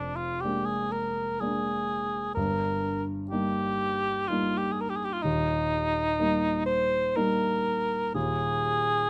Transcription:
0.00 2.34 F1 soft
0.00 2.33 F2 soft
0.00 0.17 D4 medium
0.16 0.42 F4 medium
0.41 1.38 G#3 soft
0.41 1.38 A#3 soft
0.41 1.38 D4 soft
0.41 0.67 G4 medium
0.65 0.93 G#4 medium
0.91 1.41 A#4 medium
1.40 2.33 G#3 soft
1.40 2.33 A#3 soft
1.40 2.33 D4 soft
1.40 2.34 G#4 medium
2.35 5.22 G1 soft
2.35 5.22 G2 soft
2.35 3.03 A#4 medium
3.30 4.26 G3 soft
3.30 4.26 A#3 soft
3.30 4.26 D#4 soft
3.30 4.29 G4 medium
4.28 5.22 G3 soft
4.28 5.22 A#3 soft
4.28 5.23 D#4 soft
4.28 4.59 F4 medium
4.57 4.73 G4 medium
4.72 4.82 G#4 medium
4.80 4.91 A#4 medium
4.89 4.97 G4 medium
4.95 5.06 G#4 medium
5.05 5.14 G4 medium
5.13 5.24 F4 medium
5.22 8.10 D#1 soft
5.22 8.11 D#2 medium
5.22 6.65 D#4 medium
6.19 7.13 G3 soft
6.19 7.13 A#3 soft
6.19 7.13 D#4 soft
6.66 7.18 C5 medium
7.16 8.11 G3 soft
7.16 8.11 A#3 soft
7.16 8.11 D#4 soft
7.16 8.14 A#4 medium
8.14 9.10 D#1 medium
8.14 9.10 D#2 medium
8.14 9.10 G#4 loud

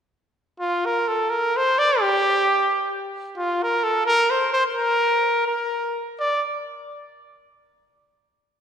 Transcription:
0.60 0.87 F4 medium
0.85 1.09 A#4 medium
1.08 1.32 A4 medium
1.30 1.58 A#4 medium
1.57 1.80 C5 medium
1.79 2.02 D5 medium
2.00 2.95 G4 medium
3.37 3.64 F4 medium
3.63 3.85 A#4 medium
3.84 4.06 A4 medium
4.06 4.32 A#4 loud
4.31 4.52 C5 medium
4.53 4.64 C5 medium
4.74 5.43 A#4 medium
5.47 5.98 A#4 medium
6.20 6.44 D5 medium

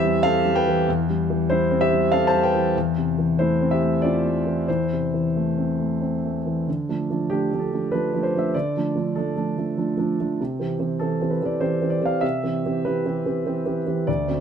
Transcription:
0.00 0.83 E2 medium
0.00 0.68 E3 medium
0.00 0.04 G3 medium
0.00 0.17 C4 medium
0.00 0.90 E4 medium
0.00 0.23 G4 medium
0.00 0.90 C5 medium
0.00 0.24 E5 loud
0.04 0.37 G3 medium
0.23 0.58 C4 medium
0.23 0.53 A4 medium
0.23 0.55 F5 loud
0.45 0.79 G3 medium
0.55 0.85 B4 medium
0.55 0.87 G5 medium
0.68 1.01 E3 medium
0.88 2.71 E2 medium
1.10 1.42 G3 soft
1.30 1.63 E3 medium
1.50 1.84 G3 medium
1.50 1.79 E4 medium
1.50 1.81 C5 medium
1.71 2.04 C4 medium
1.81 2.10 G4 medium
1.81 2.12 E5 medium
1.92 2.25 G3 medium
2.12 2.46 C4 medium
2.12 2.27 A4 medium
2.12 2.28 F5 loud
2.27 2.42 C5 medium
2.27 2.43 A5 loud
2.34 2.67 G3 medium
2.43 2.73 B4 medium
2.43 2.75 G5 medium
2.55 2.75 E3 soft
2.76 4.64 E2 medium
2.98 3.30 C3 soft
3.18 3.51 E3 soft
3.39 3.73 A3 soft
3.39 3.68 E4 medium
3.39 3.70 C5 medium
3.62 3.94 C4 soft
3.71 4.01 G4 medium
3.71 4.02 E5 medium
3.82 4.15 A3 soft
4.02 4.37 C4 soft
4.02 4.64 F4 medium
4.02 4.67 D5 medium
4.24 4.59 A3 soft
4.47 4.81 E3 soft
4.68 6.64 E2 medium
4.68 5.98 E4 soft
4.68 6.01 C5 medium
4.93 5.27 C3 soft
5.14 5.49 E3 soft
5.36 5.71 A3 soft
5.58 5.93 C4 soft
5.80 6.15 A3 soft
6.02 6.37 C4 soft
6.25 6.60 A3 soft
6.46 6.67 E3 soft
6.68 6.88 D3 medium
6.89 7.08 F3 soft
6.89 7.08 A3 soft
6.89 7.08 D4 soft
7.10 7.29 F3 soft
7.10 7.29 A3 soft
7.10 7.30 D4 soft
7.30 7.50 F3 soft
7.30 7.50 A3 soft
7.30 7.50 D4 soft
7.30 7.61 G4 medium
7.53 7.71 F3 soft
7.53 7.71 A3 soft
7.53 7.71 D4 soft
7.59 7.91 A4 medium
7.73 7.91 F3 soft
7.73 7.91 A3 soft
7.73 7.91 D4 soft
7.92 8.11 F3 soft
7.92 8.12 A3 soft
7.92 8.12 D4 soft
7.92 8.23 B4 medium
8.14 8.32 F3 soft
8.14 8.32 A3 soft
8.14 8.33 D4 soft
8.23 8.39 C5 medium
8.35 8.53 F3 soft
8.35 8.53 A3 soft
8.35 8.53 D4 soft
8.35 8.54 E5 medium
8.54 8.75 D3 medium
8.54 9.16 D5 medium
8.77 8.94 F3 soft
8.77 8.95 A3 soft
8.77 8.95 D4 soft
8.95 9.14 F3 soft
8.95 9.15 A3 soft
8.95 9.15 D4 soft
9.15 9.35 F3 soft
9.15 9.35 A3 soft
9.15 9.35 D4 soft
9.15 10.08 A4 medium
9.36 9.55 F3 soft
9.36 9.56 A3 soft
9.36 9.56 D4 soft
9.57 9.76 F3 soft
9.57 9.76 A3 soft
9.57 9.76 D4 soft
9.77 9.96 F3 soft
9.77 9.96 A3 soft
9.77 9.96 D4 soft
9.97 10.16 F3 soft
9.97 10.17 A3 soft
9.97 10.17 D4 soft
10.20 10.38 F3 soft
10.20 10.38 A3 soft
10.20 10.38 D4 soft
10.40 10.60 C3 medium
10.60 10.78 E3 soft
10.60 10.78 C4 soft
10.60 10.78 G4 soft
10.79 10.98 E3 soft
10.79 10.98 C4 soft
10.79 10.98 G4 soft
10.99 11.19 E3 soft
10.99 11.19 C4 soft
10.99 11.19 G4 soft
10.99 11.31 A4 medium
11.21 11.40 E3 soft
11.21 11.40 C4 soft
11.21 11.40 G4 soft
11.31 11.46 B4 soft
11.42 11.60 E3 soft
11.42 11.60 C4 soft
11.42 11.61 G4 soft
11.42 11.61 D5 medium
11.60 11.80 E3 soft
11.60 11.80 C4 soft
11.60 11.80 G4 soft
11.60 11.92 C5 medium
11.82 12.00 E3 soft
11.82 12.01 C4 soft
11.82 12.01 G4 soft
11.90 12.06 D5 medium
12.02 12.21 E3 soft
12.02 12.21 C4 soft
12.02 12.21 G4 soft
12.02 12.22 F5 medium
12.21 12.43 C3 medium
12.21 12.84 E5 medium
12.43 12.62 E3 soft
12.43 12.62 C4 soft
12.43 12.63 G4 soft
12.66 12.84 E3 soft
12.66 12.84 C4 soft
12.66 12.84 G4 soft
12.85 13.04 E3 soft
12.85 13.04 C4 soft
12.85 13.04 G4 soft
12.85 13.77 B4 medium
13.06 13.24 E3 soft
13.06 13.25 C4 soft
13.06 13.25 G4 soft
13.26 13.45 E3 soft
13.26 13.45 C4 soft
13.26 13.45 G4 soft
13.46 13.64 E3 soft
13.46 13.65 C4 soft
13.46 13.65 G4 soft
13.66 13.85 E3 soft
13.66 13.85 C4 soft
13.66 13.85 G4 soft
13.87 14.05 E3 soft
13.87 14.06 C4 soft
13.87 14.06 G4 soft
14.07 14.27 D2 medium
14.07 14.40 D5 medium
14.27 14.40 D3 soft
14.27 14.40 C4 soft
14.27 14.40 F#4 soft

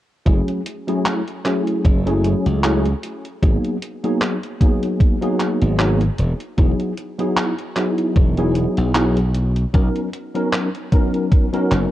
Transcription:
0.26 0.40 F#1 medium
0.26 0.60 F#3 medium
0.26 0.60 A3 medium
0.26 0.60 C#4 medium
0.26 0.60 E4 medium
0.26 0.60 G#4 medium
0.26 kick loud
0.26 closed hi-hat medium
0.48 closed hi-hat soft
0.66 closed hi-hat medium
0.87 1.19 F#3 medium
0.87 1.20 A3 medium
0.87 1.20 C#4 medium
0.87 1.20 E4 medium
0.87 1.20 G#4 medium
0.87 closed hi-hat soft
1.06 clap loud
1.06 closed hi-hat medium
1.27 closed hi-hat soft
1.44 2.01 F#3 medium
1.44 2.01 A3 medium
1.44 2.01 C#4 medium
1.44 2.01 E4 medium
1.44 2.01 G#4 medium
1.44 clap medium
1.44 closed hi-hat medium
1.67 closed hi-hat soft
1.85 2.33 F#1 medium
1.85 kick loud
1.85 closed hi-hat medium
2.06 2.59 F#3 medium
2.06 2.59 A3 medium
2.06 2.59 C#4 medium
2.06 2.59 E4 medium
2.06 2.60 G#4 medium
2.06 closed hi-hat soft
2.24 closed hi-hat medium
2.46 2.93 C#2 medium
2.46 closed hi-hat soft
2.63 2.85 F#3 medium
2.63 2.86 A3 medium
2.63 2.86 C#4 medium
2.63 2.86 E4 medium
2.63 2.86 G#4 medium
2.63 clap loud
2.63 closed hi-hat medium
2.85 closed hi-hat soft
3.03 closed hi-hat medium
3.25 closed hi-hat soft
3.42 3.56 G#1 medium
3.42 3.75 F#3 medium
3.42 3.76 A#3 medium
3.42 3.76 B3 medium
3.42 3.76 D#4 medium
3.42 3.76 G#4 medium
3.42 kick loud
3.42 closed hi-hat medium
3.64 closed hi-hat soft
3.82 closed hi-hat medium
4.03 4.35 F#3 medium
4.03 4.36 A#3 medium
4.03 4.36 B3 medium
4.03 4.36 D#4 medium
4.03 4.36 G#4 medium
4.03 closed hi-hat soft
4.21 clap loud
4.21 closed hi-hat medium
4.43 closed hi-hat soft
4.60 5.17 F#3 medium
4.60 5.17 A#3 medium
4.60 5.17 B3 medium
4.60 5.17 D#4 medium
4.60 5.17 G#4 medium
4.60 kick loud
4.60 closed hi-hat medium
4.83 closed hi-hat soft
5.00 kick loud
5.00 closed hi-hat medium
5.21 5.75 F#3 medium
5.21 5.75 A#3 medium
5.21 5.75 B3 medium
5.21 5.75 D#4 medium
5.21 5.75 G#4 medium
5.21 closed hi-hat soft
5.40 clap medium
5.40 closed hi-hat medium
5.62 6.09 G#1 medium
5.62 closed hi-hat soft
5.78 6.01 F#3 medium
5.78 6.01 A#3 medium
5.78 6.01 B3 medium
5.78 6.02 D#4 medium
5.78 6.02 G#4 medium
5.78 clap loud
5.78 closed hi-hat medium
6.01 closed hi-hat soft
6.18 6.33 E1 medium
6.18 closed hi-hat medium
6.40 closed hi-hat soft
6.57 6.72 E1 medium
6.57 6.91 F#3 medium
6.57 6.91 B3 medium
6.57 6.92 D#4 medium
6.57 6.92 E4 medium
6.57 6.92 G#4 medium
6.57 kick loud
6.57 closed hi-hat medium
6.80 closed hi-hat soft
6.97 closed hi-hat medium
7.18 7.51 F#3 medium
7.18 7.51 B3 medium
7.18 7.51 D#4 medium
7.18 7.51 E4 medium
7.18 7.52 G#4 medium
7.18 closed hi-hat soft
7.37 clap loud
7.37 closed hi-hat medium
7.58 closed hi-hat soft
7.76 8.32 F#3 medium
7.76 8.32 B3 medium
7.76 8.33 D#4 medium
7.76 8.33 E4 medium
7.76 8.33 G#4 medium
7.76 clap medium
7.76 closed hi-hat medium
7.98 closed hi-hat soft
8.16 8.65 E1 medium
8.16 kick loud
8.16 closed hi-hat medium
8.37 8.90 F#3 medium
8.37 8.91 B3 medium
8.37 8.91 D#4 medium
8.37 8.91 E4 medium
8.37 8.91 G#4 medium
8.37 closed hi-hat soft
8.55 closed hi-hat medium
8.77 9.64 B1 medium
8.77 closed hi-hat soft
8.94 9.17 F#3 medium
8.94 9.17 B3 medium
8.94 9.17 D#4 medium
8.94 9.17 E4 medium
8.94 9.18 G#4 medium
8.94 clap loud
8.94 closed hi-hat medium
9.17 closed hi-hat soft
9.34 closed hi-hat medium
9.56 closed hi-hat soft
9.73 9.88 B1 medium
9.73 10.07 F#3 medium
9.73 10.07 B3 medium
9.73 10.07 C#4 medium
9.73 10.07 D#4 medium
9.73 10.08 A#4 medium
9.73 kick loud
9.73 closed hi-hat medium
9.95 closed hi-hat soft
10.13 closed hi-hat medium
10.34 10.67 F#3 medium
10.34 10.67 B3 medium
10.34 10.67 C#4 medium
10.34 10.67 D#4 medium
10.34 10.67 A#4 medium
10.34 closed hi-hat soft
10.53 clap loud
10.53 closed hi-hat medium
10.75 closed hi-hat soft
10.92 11.48 F#3 medium
10.92 11.48 B3 medium
10.92 11.49 C#4 medium
10.92 11.49 D#4 medium
10.92 11.49 A#4 medium
10.92 kick loud
10.92 closed hi-hat medium
11.14 closed hi-hat soft
11.32 kick loud
11.32 closed hi-hat medium
11.53 11.91 F#3 medium
11.53 11.91 B3 medium
11.53 11.91 C#4 medium
11.53 11.91 D#4 medium
11.53 11.91 A#4 medium
11.53 closed hi-hat soft
11.71 11.85 F#1 loud
11.71 clap medium
11.71 closed hi-hat medium

